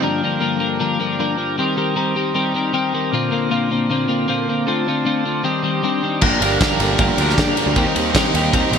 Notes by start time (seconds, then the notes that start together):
0.02 G2 D3 F3 A#3 D4 F4 A#4 D5 G5
0.23 G2 D3 F3 A#3 D4 A#4
0.40 G2 D3 F3 A#3 D4 A#4
0.59 G2 D3 F3 A#3 D4 A#4
0.79 G2 D3 F3 A#3 D4 A#4
0.99 G2 D3 F3 A#3 D4 A#4
1.19 G2 D3 F3 A#3 D4 A#4
1.36 G2 D3 F3 A#3 D4 A#4
1.58 D#3 G3 C4 G4 A#4 C5 D#5 A#5
1.76 D#3 G3 C4 G4 A#4
1.96 D#3 G3 C4 G4 A#4
2.16 D#3 G3 C4 G4 A#4
2.34 D#3 G3 C4 G4 A#4
2.54 D#3 G3 C4 G4 A#4
2.73 D#3 G3 C4 G4 A#4
2.93 D#3 G3 C4 G4 A#4
3.10 A#2 D3 A#3 F4 D5
3.14 C4 F4
3.31 A#2 D3 A#3 C4 F4
3.50 A#2 D3 A#3 C4 F4
3.70 A#2 D3 A#3 C4 F4
3.89 A#2 D3 A#3 C4 F4
4.08 A#2 D3 A#3 C4 F4
4.28 A#2 D3 A#3 C4 F4
4.48 A#2 D3 A#3 C4 F4
4.66 D3 A3 C4 F4 A5
4.87 D3 A3 C4 F4
5.05 D3 A3 C4 F4
5.25 D3 A3 C4 F4
5.43 D#3 G3 C4 D4 G4 D#5 C6
5.63 D#3 G3 C4 D4 G4
5.83 D#3 G3 C4 D4 G4
6.03 D#3 G3 C4 D4 G4
6.21 G1 G2 D3 F3 A#3 D4 G4 A#4 F5 A#5, kick, crash
6.40 G1 G2 D3 F3 A#3 D4 G4 A#4, ride
6.60 G2 D3 F3 A#3 D4 G4 A#4, kick, snare, ride
6.79 G1 G2 D3 F3 A#3 D4 G4 A#4, ride
6.99 G1 G2 D3 F3 A#3 D4 G4 A#4, kick, ride
7.18 D2 G2 D3 F3 A#3 D4 G4 A#4, ride
7.30 snare
7.37 G2 D3 F3 A#3 D4 G4 A#4, kick, snare, ride
7.56 G2 D3 F3 A#3 D4 G4 A#4, ride
7.66 D2
7.75 D#2 D#3 G3 A#3 C4 D#4 G4 A#4 C5 D#5, kick, ride
7.95 D#2 D#3 G3 A#3 C4 D#4 G4 A#4, ride
8.14 D#3 G3 A#3 C4 D#4 G4 A#4, kick, snare, ride
8.34 D#2 D#3 G3 A#3 C4 D#4 G4 A#4, ride
8.52 D#2 D#3 G3 A#3 C4 D#4 G4 A#4, kick, ride
8.71 A#1 D#3 G3 A#3 C4 D#4 G4 A#4, ride